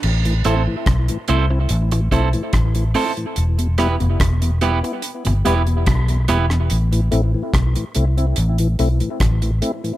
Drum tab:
CC |x---------------|----------------|----------------|
HH |-xx-xxx-xxxxxxox|xxxxxxxxxxxxxxxx|xxx-xxxxxxxxxxxx|
SD |----r-------r---|--r-r-------r--r|----r-------r---|
BD |----o-----o-o---|----o-------o---|----o-------o---|